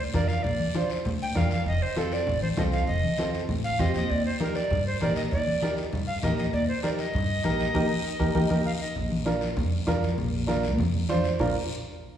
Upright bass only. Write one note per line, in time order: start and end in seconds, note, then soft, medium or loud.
0.14 0.38 F2 loud
0.44 0.56 A#1 medium
1.05 1.29 D2 medium
1.35 1.60 F2 loud
1.66 1.78 F1 medium
2.27 2.51 A1 medium
2.57 2.82 C2 loud
2.87 3.00 F1 loud
3.49 3.73 A1 medium
3.79 3.93 F2 medium
3.94 4.08 D#2 medium
4.10 4.22 D#2 medium
4.71 4.95 G2 medium
5.01 5.25 A#1 medium
5.32 5.44 D#2 medium
5.92 6.17 G2 medium
6.23 6.47 A#1 loud
6.53 6.65 D#2 loud
7.14 7.38 G2 medium
7.44 7.68 A#1 loud
7.74 7.86 D#2 loud
8.20 8.31 D#2 medium
8.35 8.46 D#2 medium
8.50 8.61 D#2 medium
8.96 9.58 A#1 medium
9.57 9.81 F2 loud
9.87 10.11 F2 medium
10.18 10.78 A#1 loud
10.78 11.03 F2 medium
11.09 11.34 F2 loud
11.39 11.54 A#1 medium